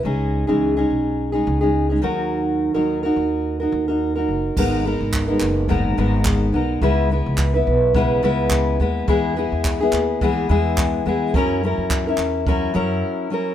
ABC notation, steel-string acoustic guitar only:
X:1
M:4/4
L:1/16
Q:"Swing 16ths" 1/4=106
K:G#m
V:1 name="Steel-string acoustic guitar"
[G,CDG]3 [C,E,G,CDG]2 [G,CDG]4 [G,CDG]2 [G,CDG]2 [G,CDG] [D,F,DFA]2- | [D,F,DFA]3 [D,F,DFA]2 [DFA]4 [DFA]2 [DFA]2 [DFA]3 | [G,,D,G,B,DA]2 [G,B,DA]3 [G,B,DA]3 [G,,D,G,B,DA]2 [G,,D,G,B,DA]4 [G,B,DA]2 | [C,G,B,EB]2 [G,B,EB]3 [B,EB]3 [C,G,B,EB]2 [C,G,B,EB]4 [G,B,EB]2 |
[E,G,B,EG]2 [G,B,EG]3 [B,EG]3 [E,G,B,EG]2 [E,G,B,EG]4 [G,B,EG]2 | [F,CEA]2 [F,CEA]3 [CEA]3 [F,CEA]2 [F,CEA]4 [F,CEA]2 |]